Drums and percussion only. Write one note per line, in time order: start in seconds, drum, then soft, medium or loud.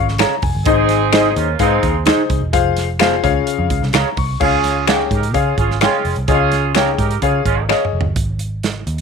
0.08 snare soft
0.18 finger snap loud
0.18 snare loud
0.18 closed hi-hat medium
0.42 kick loud
0.42 open hi-hat medium
0.65 kick loud
0.65 closed hi-hat loud
0.89 snare soft
0.89 closed hi-hat medium
1.13 finger snap loud
1.13 snare loud
1.13 closed hi-hat medium
1.36 closed hi-hat medium
1.59 kick medium
1.59 closed hi-hat medium
1.83 kick medium
1.83 closed hi-hat medium
2.06 finger snap loud
2.06 snare loud
2.06 closed hi-hat medium
2.30 kick loud
2.30 closed hi-hat medium
2.53 kick loud
2.53 closed hi-hat loud
2.77 snare soft
2.77 closed hi-hat medium
2.99 finger snap loud
2.99 snare loud
2.99 closed hi-hat medium
3.24 kick loud
3.24 closed hi-hat medium
3.47 closed hi-hat medium
3.70 kick medium
3.70 closed hi-hat medium
3.83 snare soft
3.93 finger snap loud
3.93 snare loud
3.93 closed hi-hat medium
4.17 kick loud
4.17 open hi-hat medium
4.41 kick loud
4.41 crash loud
4.64 snare soft
4.64 closed hi-hat medium
4.87 finger snap medium
4.87 snare loud
4.87 closed hi-hat medium
5.11 kick medium
5.11 closed hi-hat medium
5.23 closed hi-hat medium
5.34 kick medium
5.34 closed hi-hat medium
5.58 kick medium
5.58 closed hi-hat medium
5.71 snare soft
5.81 finger snap medium
5.81 snare loud
5.81 closed hi-hat medium
6.05 open hi-hat medium
6.16 closed hi-hat soft
6.28 kick loud
6.28 closed hi-hat medium
6.52 snare soft
6.52 closed hi-hat medium
6.75 finger snap loud
6.75 snare loud
6.75 closed hi-hat medium
6.98 kick medium
6.98 closed hi-hat medium
7.11 closed hi-hat medium
7.22 kick medium
7.22 closed hi-hat medium
7.46 kick medium
7.46 closed hi-hat medium
7.69 finger snap medium
7.69 snare medium
7.85 mid tom medium
8.01 floor tom medium
8.16 kick loud
8.16 closed hi-hat medium
8.39 closed hi-hat medium
8.63 snare medium
8.63 closed hi-hat medium
8.87 closed hi-hat medium